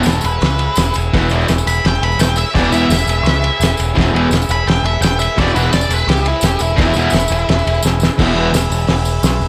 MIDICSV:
0, 0, Header, 1, 6, 480
1, 0, Start_track
1, 0, Key_signature, 4, "major"
1, 0, Tempo, 352526
1, 1539, Time_signature, 4, 2, 24, 8
1, 12911, End_track
2, 0, Start_track
2, 0, Title_t, "Lead electric guitar"
2, 0, Program_c, 0, 29
2, 112, Note_on_c, 0, 67, 80
2, 123, Note_on_c, 0, 71, 91
2, 327, Note_off_c, 0, 67, 0
2, 334, Note_off_c, 0, 71, 0
2, 350, Note_on_c, 0, 71, 89
2, 1278, Note_off_c, 0, 71, 0
2, 2280, Note_on_c, 0, 83, 91
2, 2505, Note_off_c, 0, 83, 0
2, 2541, Note_on_c, 0, 79, 91
2, 2757, Note_off_c, 0, 79, 0
2, 2773, Note_on_c, 0, 83, 88
2, 2993, Note_off_c, 0, 83, 0
2, 2995, Note_on_c, 0, 79, 94
2, 3224, Note_off_c, 0, 79, 0
2, 3232, Note_on_c, 0, 76, 75
2, 3463, Note_off_c, 0, 76, 0
2, 3470, Note_on_c, 0, 74, 73
2, 3707, Note_off_c, 0, 74, 0
2, 3707, Note_on_c, 0, 76, 97
2, 5106, Note_off_c, 0, 76, 0
2, 6144, Note_on_c, 0, 83, 93
2, 6360, Note_off_c, 0, 83, 0
2, 6361, Note_on_c, 0, 79, 97
2, 6588, Note_off_c, 0, 79, 0
2, 6614, Note_on_c, 0, 76, 100
2, 6826, Note_off_c, 0, 76, 0
2, 6832, Note_on_c, 0, 79, 97
2, 7063, Note_off_c, 0, 79, 0
2, 7076, Note_on_c, 0, 76, 92
2, 7305, Note_off_c, 0, 76, 0
2, 7347, Note_on_c, 0, 74, 95
2, 7548, Note_off_c, 0, 74, 0
2, 7553, Note_on_c, 0, 71, 85
2, 7800, Note_off_c, 0, 71, 0
2, 7800, Note_on_c, 0, 74, 93
2, 8072, Note_off_c, 0, 74, 0
2, 8072, Note_on_c, 0, 71, 91
2, 8282, Note_off_c, 0, 71, 0
2, 8295, Note_on_c, 0, 67, 94
2, 8513, Note_off_c, 0, 67, 0
2, 8545, Note_on_c, 0, 64, 98
2, 8758, Note_off_c, 0, 64, 0
2, 8782, Note_on_c, 0, 67, 109
2, 8996, Note_off_c, 0, 67, 0
2, 8997, Note_on_c, 0, 64, 95
2, 9216, Note_off_c, 0, 64, 0
2, 9232, Note_on_c, 0, 64, 97
2, 10620, Note_off_c, 0, 64, 0
2, 12911, End_track
3, 0, Start_track
3, 0, Title_t, "Transistor combo organ"
3, 0, Program_c, 1, 18
3, 0, Note_on_c, 1, 68, 65
3, 0, Note_on_c, 1, 71, 63
3, 0, Note_on_c, 1, 76, 73
3, 3392, Note_off_c, 1, 68, 0
3, 3406, Note_off_c, 1, 71, 0
3, 3415, Note_off_c, 1, 76, 0
3, 3454, Note_on_c, 1, 68, 60
3, 3485, Note_on_c, 1, 71, 57
3, 3540, Note_on_c, 1, 76, 80
3, 7216, Note_off_c, 1, 68, 0
3, 7233, Note_on_c, 1, 68, 69
3, 7263, Note_off_c, 1, 71, 0
3, 7267, Note_off_c, 1, 76, 0
3, 7280, Note_on_c, 1, 71, 64
3, 7283, Note_on_c, 1, 76, 71
3, 11044, Note_off_c, 1, 68, 0
3, 11068, Note_off_c, 1, 71, 0
3, 11070, Note_off_c, 1, 76, 0
3, 11072, Note_on_c, 1, 68, 84
3, 11104, Note_on_c, 1, 71, 76
3, 11120, Note_on_c, 1, 76, 83
3, 12911, Note_off_c, 1, 68, 0
3, 12911, Note_off_c, 1, 71, 0
3, 12911, Note_off_c, 1, 76, 0
3, 12911, End_track
4, 0, Start_track
4, 0, Title_t, "Distorted electric guitar"
4, 0, Program_c, 2, 30
4, 1543, Note_on_c, 2, 47, 108
4, 1544, Note_on_c, 2, 52, 96
4, 1547, Note_on_c, 2, 40, 100
4, 1734, Note_off_c, 2, 47, 0
4, 1734, Note_off_c, 2, 52, 0
4, 1736, Note_off_c, 2, 40, 0
4, 1777, Note_on_c, 2, 40, 104
4, 1785, Note_on_c, 2, 47, 102
4, 1805, Note_on_c, 2, 52, 104
4, 1971, Note_off_c, 2, 40, 0
4, 1975, Note_off_c, 2, 47, 0
4, 1986, Note_off_c, 2, 52, 0
4, 3465, Note_on_c, 2, 47, 111
4, 3466, Note_on_c, 2, 40, 96
4, 3486, Note_on_c, 2, 52, 105
4, 3658, Note_off_c, 2, 47, 0
4, 3659, Note_off_c, 2, 40, 0
4, 3669, Note_off_c, 2, 52, 0
4, 3697, Note_on_c, 2, 40, 110
4, 3712, Note_on_c, 2, 47, 95
4, 3717, Note_on_c, 2, 52, 108
4, 3895, Note_off_c, 2, 40, 0
4, 3902, Note_off_c, 2, 47, 0
4, 3905, Note_off_c, 2, 52, 0
4, 5378, Note_on_c, 2, 40, 97
4, 5383, Note_on_c, 2, 47, 87
4, 5386, Note_on_c, 2, 52, 101
4, 5576, Note_off_c, 2, 40, 0
4, 5578, Note_off_c, 2, 47, 0
4, 5580, Note_off_c, 2, 52, 0
4, 5617, Note_on_c, 2, 40, 100
4, 5627, Note_on_c, 2, 47, 117
4, 5636, Note_on_c, 2, 52, 113
4, 5816, Note_off_c, 2, 40, 0
4, 5820, Note_off_c, 2, 47, 0
4, 5825, Note_off_c, 2, 52, 0
4, 7310, Note_on_c, 2, 40, 97
4, 7328, Note_on_c, 2, 47, 93
4, 7329, Note_on_c, 2, 52, 112
4, 7501, Note_off_c, 2, 40, 0
4, 7510, Note_off_c, 2, 47, 0
4, 7510, Note_off_c, 2, 52, 0
4, 7562, Note_on_c, 2, 40, 102
4, 7566, Note_on_c, 2, 47, 111
4, 7568, Note_on_c, 2, 52, 117
4, 7747, Note_off_c, 2, 40, 0
4, 7748, Note_off_c, 2, 47, 0
4, 7750, Note_off_c, 2, 52, 0
4, 9194, Note_on_c, 2, 40, 89
4, 9207, Note_on_c, 2, 47, 111
4, 9220, Note_on_c, 2, 52, 109
4, 9400, Note_off_c, 2, 40, 0
4, 9407, Note_off_c, 2, 47, 0
4, 9413, Note_off_c, 2, 52, 0
4, 9471, Note_on_c, 2, 40, 105
4, 9478, Note_on_c, 2, 47, 98
4, 9479, Note_on_c, 2, 52, 113
4, 9658, Note_off_c, 2, 40, 0
4, 9662, Note_off_c, 2, 47, 0
4, 9662, Note_off_c, 2, 52, 0
4, 11137, Note_on_c, 2, 40, 100
4, 11154, Note_on_c, 2, 47, 97
4, 11158, Note_on_c, 2, 52, 108
4, 11328, Note_off_c, 2, 40, 0
4, 11337, Note_off_c, 2, 47, 0
4, 11339, Note_off_c, 2, 52, 0
4, 11343, Note_on_c, 2, 40, 98
4, 11356, Note_on_c, 2, 47, 104
4, 11359, Note_on_c, 2, 52, 111
4, 11550, Note_off_c, 2, 40, 0
4, 11557, Note_off_c, 2, 47, 0
4, 11558, Note_off_c, 2, 52, 0
4, 12911, End_track
5, 0, Start_track
5, 0, Title_t, "Picked electric bass"
5, 0, Program_c, 3, 34
5, 84, Note_on_c, 3, 28, 95
5, 261, Note_off_c, 3, 28, 0
5, 326, Note_on_c, 3, 28, 105
5, 503, Note_off_c, 3, 28, 0
5, 568, Note_on_c, 3, 37, 92
5, 919, Note_off_c, 3, 37, 0
5, 1053, Note_on_c, 3, 28, 97
5, 1229, Note_off_c, 3, 28, 0
5, 1310, Note_on_c, 3, 28, 89
5, 1480, Note_off_c, 3, 28, 0
5, 1547, Note_on_c, 3, 28, 102
5, 1718, Note_off_c, 3, 28, 0
5, 1778, Note_on_c, 3, 28, 93
5, 1953, Note_off_c, 3, 28, 0
5, 2031, Note_on_c, 3, 28, 84
5, 2201, Note_off_c, 3, 28, 0
5, 2264, Note_on_c, 3, 28, 90
5, 2437, Note_off_c, 3, 28, 0
5, 2516, Note_on_c, 3, 28, 85
5, 2685, Note_off_c, 3, 28, 0
5, 2739, Note_on_c, 3, 28, 88
5, 2915, Note_off_c, 3, 28, 0
5, 2963, Note_on_c, 3, 28, 92
5, 3319, Note_off_c, 3, 28, 0
5, 3483, Note_on_c, 3, 28, 108
5, 3651, Note_off_c, 3, 28, 0
5, 3687, Note_on_c, 3, 28, 98
5, 3868, Note_off_c, 3, 28, 0
5, 3943, Note_on_c, 3, 28, 85
5, 4119, Note_off_c, 3, 28, 0
5, 4174, Note_on_c, 3, 28, 92
5, 4353, Note_off_c, 3, 28, 0
5, 4399, Note_on_c, 3, 37, 95
5, 4757, Note_off_c, 3, 37, 0
5, 4901, Note_on_c, 3, 28, 88
5, 5078, Note_off_c, 3, 28, 0
5, 5167, Note_on_c, 3, 28, 84
5, 5334, Note_off_c, 3, 28, 0
5, 5418, Note_on_c, 3, 28, 98
5, 5581, Note_off_c, 3, 28, 0
5, 5626, Note_on_c, 3, 28, 94
5, 5800, Note_off_c, 3, 28, 0
5, 5862, Note_on_c, 3, 28, 94
5, 6038, Note_off_c, 3, 28, 0
5, 6118, Note_on_c, 3, 28, 102
5, 6288, Note_off_c, 3, 28, 0
5, 6343, Note_on_c, 3, 28, 84
5, 6519, Note_off_c, 3, 28, 0
5, 6570, Note_on_c, 3, 28, 104
5, 6750, Note_off_c, 3, 28, 0
5, 6821, Note_on_c, 3, 28, 100
5, 7170, Note_off_c, 3, 28, 0
5, 7327, Note_on_c, 3, 28, 107
5, 7493, Note_off_c, 3, 28, 0
5, 7559, Note_on_c, 3, 28, 90
5, 7728, Note_off_c, 3, 28, 0
5, 7809, Note_on_c, 3, 28, 92
5, 7974, Note_off_c, 3, 28, 0
5, 8022, Note_on_c, 3, 28, 100
5, 8197, Note_off_c, 3, 28, 0
5, 8268, Note_on_c, 3, 37, 87
5, 8613, Note_off_c, 3, 37, 0
5, 8752, Note_on_c, 3, 28, 103
5, 8922, Note_off_c, 3, 28, 0
5, 8992, Note_on_c, 3, 28, 79
5, 9162, Note_off_c, 3, 28, 0
5, 9251, Note_on_c, 3, 28, 109
5, 9414, Note_off_c, 3, 28, 0
5, 9459, Note_on_c, 3, 28, 98
5, 9633, Note_off_c, 3, 28, 0
5, 9703, Note_on_c, 3, 28, 91
5, 9876, Note_off_c, 3, 28, 0
5, 9947, Note_on_c, 3, 28, 104
5, 10118, Note_off_c, 3, 28, 0
5, 10195, Note_on_c, 3, 28, 92
5, 10362, Note_off_c, 3, 28, 0
5, 10440, Note_on_c, 3, 28, 98
5, 10605, Note_off_c, 3, 28, 0
5, 10661, Note_on_c, 3, 28, 100
5, 11006, Note_off_c, 3, 28, 0
5, 11146, Note_on_c, 3, 28, 100
5, 11556, Note_off_c, 3, 28, 0
5, 11611, Note_on_c, 3, 28, 77
5, 11819, Note_off_c, 3, 28, 0
5, 11850, Note_on_c, 3, 28, 101
5, 12058, Note_off_c, 3, 28, 0
5, 12079, Note_on_c, 3, 28, 98
5, 12498, Note_off_c, 3, 28, 0
5, 12567, Note_on_c, 3, 35, 101
5, 12775, Note_off_c, 3, 35, 0
5, 12800, Note_on_c, 3, 28, 85
5, 12911, Note_off_c, 3, 28, 0
5, 12911, End_track
6, 0, Start_track
6, 0, Title_t, "Drums"
6, 42, Note_on_c, 9, 54, 78
6, 79, Note_on_c, 9, 51, 96
6, 96, Note_on_c, 9, 38, 109
6, 167, Note_off_c, 9, 54, 0
6, 167, Note_on_c, 9, 54, 69
6, 215, Note_off_c, 9, 51, 0
6, 232, Note_off_c, 9, 38, 0
6, 284, Note_off_c, 9, 54, 0
6, 284, Note_on_c, 9, 54, 77
6, 333, Note_on_c, 9, 51, 74
6, 421, Note_off_c, 9, 54, 0
6, 469, Note_off_c, 9, 51, 0
6, 556, Note_on_c, 9, 54, 25
6, 569, Note_on_c, 9, 51, 91
6, 585, Note_on_c, 9, 38, 115
6, 677, Note_off_c, 9, 54, 0
6, 677, Note_on_c, 9, 54, 29
6, 705, Note_off_c, 9, 51, 0
6, 721, Note_off_c, 9, 38, 0
6, 793, Note_off_c, 9, 54, 0
6, 793, Note_on_c, 9, 54, 24
6, 805, Note_on_c, 9, 51, 81
6, 929, Note_off_c, 9, 54, 0
6, 941, Note_off_c, 9, 51, 0
6, 1028, Note_on_c, 9, 54, 82
6, 1046, Note_on_c, 9, 51, 101
6, 1062, Note_on_c, 9, 38, 123
6, 1164, Note_off_c, 9, 54, 0
6, 1182, Note_off_c, 9, 51, 0
6, 1198, Note_off_c, 9, 38, 0
6, 1275, Note_on_c, 9, 54, 69
6, 1301, Note_on_c, 9, 51, 72
6, 1411, Note_off_c, 9, 54, 0
6, 1437, Note_off_c, 9, 51, 0
6, 1546, Note_on_c, 9, 36, 100
6, 1551, Note_on_c, 9, 51, 90
6, 1568, Note_on_c, 9, 38, 120
6, 1653, Note_on_c, 9, 54, 27
6, 1683, Note_off_c, 9, 36, 0
6, 1688, Note_off_c, 9, 51, 0
6, 1704, Note_off_c, 9, 38, 0
6, 1763, Note_off_c, 9, 54, 0
6, 1763, Note_on_c, 9, 54, 59
6, 1785, Note_on_c, 9, 51, 76
6, 1899, Note_off_c, 9, 54, 0
6, 1920, Note_on_c, 9, 54, 28
6, 1921, Note_off_c, 9, 51, 0
6, 2020, Note_off_c, 9, 54, 0
6, 2020, Note_on_c, 9, 54, 87
6, 2025, Note_on_c, 9, 51, 94
6, 2041, Note_on_c, 9, 38, 92
6, 2154, Note_off_c, 9, 54, 0
6, 2154, Note_on_c, 9, 54, 73
6, 2161, Note_off_c, 9, 51, 0
6, 2177, Note_off_c, 9, 38, 0
6, 2274, Note_on_c, 9, 51, 69
6, 2281, Note_off_c, 9, 54, 0
6, 2281, Note_on_c, 9, 54, 79
6, 2403, Note_off_c, 9, 54, 0
6, 2403, Note_on_c, 9, 54, 30
6, 2410, Note_off_c, 9, 51, 0
6, 2516, Note_on_c, 9, 51, 104
6, 2531, Note_off_c, 9, 54, 0
6, 2531, Note_on_c, 9, 54, 28
6, 2532, Note_on_c, 9, 38, 120
6, 2652, Note_off_c, 9, 51, 0
6, 2654, Note_off_c, 9, 54, 0
6, 2654, Note_on_c, 9, 54, 29
6, 2668, Note_off_c, 9, 38, 0
6, 2764, Note_off_c, 9, 54, 0
6, 2764, Note_on_c, 9, 51, 88
6, 2764, Note_on_c, 9, 54, 27
6, 2884, Note_off_c, 9, 54, 0
6, 2884, Note_on_c, 9, 54, 28
6, 2900, Note_off_c, 9, 51, 0
6, 2985, Note_off_c, 9, 54, 0
6, 2985, Note_on_c, 9, 54, 90
6, 2997, Note_on_c, 9, 51, 109
6, 3013, Note_on_c, 9, 38, 121
6, 3115, Note_off_c, 9, 54, 0
6, 3115, Note_on_c, 9, 54, 31
6, 3133, Note_off_c, 9, 51, 0
6, 3149, Note_off_c, 9, 38, 0
6, 3210, Note_off_c, 9, 54, 0
6, 3210, Note_on_c, 9, 54, 81
6, 3240, Note_on_c, 9, 51, 80
6, 3346, Note_off_c, 9, 54, 0
6, 3376, Note_off_c, 9, 51, 0
6, 3475, Note_on_c, 9, 36, 113
6, 3482, Note_on_c, 9, 49, 100
6, 3490, Note_on_c, 9, 54, 33
6, 3498, Note_on_c, 9, 38, 118
6, 3585, Note_off_c, 9, 54, 0
6, 3585, Note_on_c, 9, 54, 30
6, 3611, Note_off_c, 9, 36, 0
6, 3618, Note_off_c, 9, 49, 0
6, 3635, Note_off_c, 9, 38, 0
6, 3708, Note_off_c, 9, 54, 0
6, 3708, Note_on_c, 9, 54, 74
6, 3728, Note_on_c, 9, 51, 82
6, 3844, Note_off_c, 9, 54, 0
6, 3864, Note_off_c, 9, 51, 0
6, 3952, Note_on_c, 9, 54, 88
6, 3964, Note_on_c, 9, 51, 95
6, 3981, Note_on_c, 9, 38, 104
6, 4063, Note_off_c, 9, 54, 0
6, 4063, Note_on_c, 9, 54, 78
6, 4100, Note_off_c, 9, 51, 0
6, 4117, Note_off_c, 9, 38, 0
6, 4184, Note_off_c, 9, 54, 0
6, 4184, Note_on_c, 9, 54, 85
6, 4209, Note_on_c, 9, 51, 81
6, 4320, Note_off_c, 9, 54, 0
6, 4345, Note_off_c, 9, 51, 0
6, 4415, Note_on_c, 9, 54, 26
6, 4440, Note_on_c, 9, 51, 102
6, 4457, Note_on_c, 9, 38, 118
6, 4537, Note_off_c, 9, 54, 0
6, 4537, Note_on_c, 9, 54, 31
6, 4576, Note_off_c, 9, 51, 0
6, 4593, Note_off_c, 9, 38, 0
6, 4653, Note_off_c, 9, 54, 0
6, 4653, Note_on_c, 9, 54, 25
6, 4681, Note_on_c, 9, 51, 77
6, 4789, Note_off_c, 9, 54, 0
6, 4817, Note_off_c, 9, 51, 0
6, 4910, Note_on_c, 9, 54, 78
6, 4933, Note_on_c, 9, 51, 106
6, 4949, Note_on_c, 9, 38, 126
6, 5046, Note_off_c, 9, 54, 0
6, 5069, Note_off_c, 9, 51, 0
6, 5086, Note_off_c, 9, 38, 0
6, 5138, Note_on_c, 9, 54, 68
6, 5171, Note_on_c, 9, 51, 78
6, 5274, Note_off_c, 9, 54, 0
6, 5285, Note_on_c, 9, 54, 21
6, 5307, Note_off_c, 9, 51, 0
6, 5380, Note_off_c, 9, 54, 0
6, 5380, Note_on_c, 9, 54, 23
6, 5411, Note_on_c, 9, 36, 109
6, 5420, Note_on_c, 9, 51, 93
6, 5436, Note_on_c, 9, 38, 118
6, 5516, Note_off_c, 9, 54, 0
6, 5520, Note_on_c, 9, 54, 23
6, 5548, Note_off_c, 9, 36, 0
6, 5556, Note_off_c, 9, 51, 0
6, 5573, Note_off_c, 9, 38, 0
6, 5656, Note_off_c, 9, 54, 0
6, 5667, Note_on_c, 9, 51, 74
6, 5803, Note_off_c, 9, 51, 0
6, 5866, Note_on_c, 9, 54, 67
6, 5893, Note_on_c, 9, 51, 95
6, 5909, Note_on_c, 9, 38, 101
6, 6002, Note_off_c, 9, 54, 0
6, 6014, Note_on_c, 9, 54, 63
6, 6029, Note_off_c, 9, 51, 0
6, 6046, Note_off_c, 9, 38, 0
6, 6111, Note_off_c, 9, 54, 0
6, 6111, Note_on_c, 9, 54, 79
6, 6140, Note_on_c, 9, 51, 70
6, 6247, Note_off_c, 9, 54, 0
6, 6276, Note_off_c, 9, 51, 0
6, 6362, Note_on_c, 9, 54, 23
6, 6378, Note_on_c, 9, 51, 89
6, 6394, Note_on_c, 9, 38, 110
6, 6478, Note_off_c, 9, 54, 0
6, 6478, Note_on_c, 9, 54, 27
6, 6514, Note_off_c, 9, 51, 0
6, 6530, Note_off_c, 9, 38, 0
6, 6597, Note_off_c, 9, 54, 0
6, 6597, Note_on_c, 9, 54, 22
6, 6609, Note_on_c, 9, 51, 82
6, 6733, Note_off_c, 9, 54, 0
6, 6746, Note_off_c, 9, 51, 0
6, 6836, Note_on_c, 9, 54, 80
6, 6852, Note_on_c, 9, 51, 105
6, 6869, Note_on_c, 9, 38, 127
6, 6973, Note_off_c, 9, 54, 0
6, 6989, Note_off_c, 9, 51, 0
6, 7005, Note_off_c, 9, 38, 0
6, 7068, Note_on_c, 9, 54, 74
6, 7101, Note_on_c, 9, 51, 77
6, 7204, Note_off_c, 9, 54, 0
6, 7237, Note_off_c, 9, 51, 0
6, 7319, Note_on_c, 9, 54, 25
6, 7325, Note_on_c, 9, 36, 111
6, 7330, Note_on_c, 9, 51, 104
6, 7347, Note_on_c, 9, 38, 120
6, 7451, Note_off_c, 9, 54, 0
6, 7451, Note_on_c, 9, 54, 27
6, 7461, Note_off_c, 9, 36, 0
6, 7467, Note_off_c, 9, 51, 0
6, 7483, Note_off_c, 9, 38, 0
6, 7570, Note_on_c, 9, 51, 74
6, 7572, Note_off_c, 9, 54, 0
6, 7572, Note_on_c, 9, 54, 57
6, 7706, Note_off_c, 9, 51, 0
6, 7708, Note_off_c, 9, 54, 0
6, 7797, Note_on_c, 9, 51, 102
6, 7798, Note_on_c, 9, 54, 75
6, 7814, Note_on_c, 9, 38, 111
6, 7914, Note_off_c, 9, 54, 0
6, 7914, Note_on_c, 9, 54, 74
6, 7934, Note_off_c, 9, 51, 0
6, 7950, Note_off_c, 9, 38, 0
6, 8039, Note_on_c, 9, 51, 79
6, 8043, Note_off_c, 9, 54, 0
6, 8043, Note_on_c, 9, 54, 77
6, 8175, Note_off_c, 9, 51, 0
6, 8180, Note_off_c, 9, 54, 0
6, 8288, Note_on_c, 9, 51, 104
6, 8290, Note_on_c, 9, 54, 29
6, 8305, Note_on_c, 9, 38, 111
6, 8404, Note_off_c, 9, 54, 0
6, 8404, Note_on_c, 9, 54, 30
6, 8425, Note_off_c, 9, 51, 0
6, 8441, Note_off_c, 9, 38, 0
6, 8515, Note_off_c, 9, 54, 0
6, 8515, Note_on_c, 9, 54, 27
6, 8520, Note_on_c, 9, 51, 83
6, 8651, Note_off_c, 9, 54, 0
6, 8657, Note_off_c, 9, 51, 0
6, 8728, Note_on_c, 9, 54, 92
6, 8751, Note_on_c, 9, 51, 111
6, 8767, Note_on_c, 9, 38, 119
6, 8864, Note_off_c, 9, 54, 0
6, 8887, Note_off_c, 9, 51, 0
6, 8904, Note_off_c, 9, 38, 0
6, 8972, Note_on_c, 9, 54, 79
6, 8994, Note_on_c, 9, 51, 80
6, 9108, Note_off_c, 9, 54, 0
6, 9116, Note_on_c, 9, 54, 28
6, 9130, Note_off_c, 9, 51, 0
6, 9225, Note_off_c, 9, 54, 0
6, 9225, Note_on_c, 9, 54, 30
6, 9236, Note_on_c, 9, 36, 115
6, 9240, Note_on_c, 9, 51, 106
6, 9256, Note_on_c, 9, 38, 115
6, 9328, Note_off_c, 9, 54, 0
6, 9328, Note_on_c, 9, 54, 31
6, 9372, Note_off_c, 9, 36, 0
6, 9376, Note_off_c, 9, 51, 0
6, 9392, Note_off_c, 9, 38, 0
6, 9443, Note_off_c, 9, 54, 0
6, 9443, Note_on_c, 9, 54, 68
6, 9484, Note_on_c, 9, 51, 71
6, 9558, Note_off_c, 9, 54, 0
6, 9558, Note_on_c, 9, 54, 30
6, 9620, Note_off_c, 9, 51, 0
6, 9668, Note_off_c, 9, 54, 0
6, 9668, Note_on_c, 9, 54, 85
6, 9711, Note_on_c, 9, 51, 80
6, 9727, Note_on_c, 9, 38, 107
6, 9798, Note_off_c, 9, 54, 0
6, 9798, Note_on_c, 9, 54, 78
6, 9847, Note_off_c, 9, 51, 0
6, 9863, Note_off_c, 9, 38, 0
6, 9912, Note_off_c, 9, 54, 0
6, 9912, Note_on_c, 9, 54, 100
6, 9966, Note_on_c, 9, 51, 77
6, 10048, Note_off_c, 9, 54, 0
6, 10058, Note_on_c, 9, 54, 33
6, 10102, Note_off_c, 9, 51, 0
6, 10193, Note_off_c, 9, 54, 0
6, 10193, Note_on_c, 9, 54, 30
6, 10195, Note_on_c, 9, 51, 91
6, 10211, Note_on_c, 9, 38, 122
6, 10330, Note_off_c, 9, 54, 0
6, 10330, Note_on_c, 9, 54, 33
6, 10331, Note_off_c, 9, 51, 0
6, 10347, Note_off_c, 9, 38, 0
6, 10440, Note_off_c, 9, 54, 0
6, 10440, Note_on_c, 9, 54, 29
6, 10448, Note_on_c, 9, 51, 78
6, 10542, Note_off_c, 9, 54, 0
6, 10542, Note_on_c, 9, 54, 30
6, 10584, Note_off_c, 9, 51, 0
6, 10655, Note_off_c, 9, 54, 0
6, 10655, Note_on_c, 9, 54, 114
6, 10699, Note_on_c, 9, 38, 78
6, 10791, Note_off_c, 9, 54, 0
6, 10835, Note_off_c, 9, 38, 0
6, 10890, Note_on_c, 9, 54, 90
6, 10938, Note_on_c, 9, 38, 103
6, 11026, Note_off_c, 9, 54, 0
6, 11034, Note_on_c, 9, 54, 27
6, 11074, Note_off_c, 9, 38, 0
6, 11151, Note_on_c, 9, 36, 121
6, 11152, Note_on_c, 9, 49, 117
6, 11168, Note_on_c, 9, 38, 127
6, 11170, Note_off_c, 9, 54, 0
6, 11287, Note_off_c, 9, 36, 0
6, 11288, Note_off_c, 9, 49, 0
6, 11304, Note_off_c, 9, 38, 0
6, 11625, Note_on_c, 9, 46, 66
6, 11627, Note_on_c, 9, 54, 96
6, 11641, Note_on_c, 9, 38, 108
6, 11761, Note_off_c, 9, 46, 0
6, 11761, Note_off_c, 9, 54, 0
6, 11761, Note_on_c, 9, 54, 30
6, 11777, Note_off_c, 9, 38, 0
6, 11869, Note_off_c, 9, 54, 0
6, 11869, Note_on_c, 9, 54, 86
6, 12005, Note_off_c, 9, 54, 0
6, 12082, Note_on_c, 9, 46, 75
6, 12099, Note_on_c, 9, 38, 119
6, 12103, Note_on_c, 9, 54, 30
6, 12218, Note_off_c, 9, 46, 0
6, 12221, Note_off_c, 9, 54, 0
6, 12221, Note_on_c, 9, 54, 30
6, 12235, Note_off_c, 9, 38, 0
6, 12326, Note_off_c, 9, 54, 0
6, 12326, Note_on_c, 9, 54, 79
6, 12462, Note_off_c, 9, 54, 0
6, 12567, Note_on_c, 9, 46, 72
6, 12569, Note_on_c, 9, 54, 96
6, 12583, Note_on_c, 9, 38, 126
6, 12703, Note_off_c, 9, 46, 0
6, 12705, Note_off_c, 9, 54, 0
6, 12719, Note_off_c, 9, 38, 0
6, 12820, Note_on_c, 9, 54, 32
6, 12911, Note_off_c, 9, 54, 0
6, 12911, End_track
0, 0, End_of_file